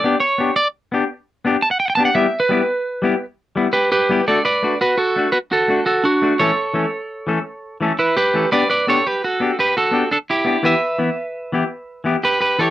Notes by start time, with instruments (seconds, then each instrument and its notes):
Already playing: clean electric guitar D5
0.04 clean electric guitar B3 D4 G4
0.20 clean electric guitar C#5
0.38 clean electric guitar B3 D4 G4
0.56 clean electric guitar D5
0.92 clean electric guitar B3 D4 G4
1.45 clean electric guitar B3 D4 G4
1.62 clean electric guitar A5
1.71 clean electric guitar F#5
1.80 clean electric guitar G5
1.85 clean electric guitar F#5
1.90 clean electric guitar G5
1.95 clean electric guitar B3 D4 A5
2.00 clean electric guitar G4
2.05 clean electric guitar F#5
2.15 clean electric guitar G3 B3 E4 G4 E5
2.40 clean electric guitar B4
2.49 clean electric guitar G3 B3 E4 G4
3.02 clean electric guitar G3 B3 E4 G4
3.56 clean electric guitar G3 B3 E4
3.73 clean electric guitar G4 B4
3.92 clean electric guitar G4 B4
4.09 clean electric guitar G3 B3 E4 G4
4.28 clean electric guitar A3 D4 F#4 A4 D5
4.45 clean electric guitar B4 D5
4.63 clean electric guitar A3 D4 F#4
4.81 clean electric guitar F#4 B4
4.98 clean electric guitar F#4 A4
5.16 clean electric guitar A3 D4 F#4
5.32 clean electric guitar F#4 B4
5.52 clean electric guitar F#4 A4
5.68 clean electric guitar A3 D4 F#4
5.86 clean electric guitar F#4 A4
6.04 clean electric guitar D4 F#4
6.22 clean electric guitar A3 D4 F#4
6.39 clean electric guitar E3 A3 C#4 A4 C#5
6.74 clean electric guitar E3 A3 C#4 A4
7.27 clean electric guitar E3 A3 C#4 A4
7.81 clean electric guitar E3 A3 C#4 A4
7.99 clean electric guitar E4 B4
8.17 clean electric guitar G4 B4
8.34 clean electric guitar E3 A3 C#4 A4
8.52 clean electric guitar B3 D4 G4 B4 D5
8.70 clean electric guitar B4 D5
8.87 clean electric guitar B3 D4 G4 A4 C#5
9.07 clean electric guitar G4 B4
9.24 clean electric guitar F#4 A4
9.40 clean electric guitar B3 D4 G4
9.59 clean electric guitar G4 B4
9.77 clean electric guitar F#4 A4
9.91 clean electric guitar B3 D4 G4
10.11 clean electric guitar D4 A4
10.30 clean electric guitar E4 G4
10.45 clean electric guitar B3 D4 G4
10.63 clean electric guitar E3 B3 E4 G4 B4 E5
10.98 clean electric guitar E3 B3 E4
11.52 clean electric guitar E3 B3 E4 G4
12.04 clean electric guitar E3 B3 E4 G4
12.24 clean electric guitar G4 B4
12.41 clean electric guitar G4 B4
12.59 clean electric guitar E3 E4 G4 A4 C#5, muted clean electric guitar stroke